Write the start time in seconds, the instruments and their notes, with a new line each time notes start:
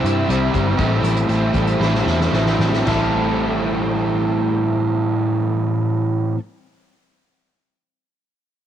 Already playing: overdriven electric guitar C3 E3 G3 C4 E4, clean electric guitar G3, string machine C5 E5 G5 E6
0.04 picked electric bass G2, overdriven electric guitar G3 C4 E4, clean electric guitar E4, closed hi-hat
0.28 picked electric bass C2, overdriven electric guitar C3 E3 G3 C4 E4, closed hi-hat
0.52 picked electric bass G1, overdriven electric guitar G3 C4 E4, kick, closed hi-hat
0.78 picked electric bass A1, overdriven electric guitar A2 E3 A3 C4 E4, clean electric guitar G3, string machine C5 A5 E6, kick, closed hi-hat
1.02 picked electric bass A1, clean electric guitar E4, closed hi-hat
1.16 closed hi-hat
1.29 picked electric bass A1, overdriven electric guitar E3 A3 C4 E4, closed hi-hat
1.54 picked electric bass A1, clean electric guitar G3, overdriven electric guitar A3 C4 E4, kick, closed hi-hat
1.67 closed hi-hat
1.79 picked electric bass A1, overdriven electric guitar A2 E3 A3 C4 E4, snare
1.95 snare
2.05 picked electric bass E2, overdriven electric guitar A3 C4 E4, clean electric guitar E4, snare
2.20 snare
2.32 picked electric bass A1, overdriven electric guitar E3 A3 C4 E4, snare
2.46 snare
2.59 picked electric bass A1, clean electric guitar G3, overdriven electric guitar A3 C4 E4, snare
2.73 snare
2.85 picked electric bass A1, overdriven electric guitar A2 E3 A3 C4 E4, clean electric guitar G3, string machine A3 A4 C5 G5, snare, floor tom, crash
2.89 overdriven electric guitar A4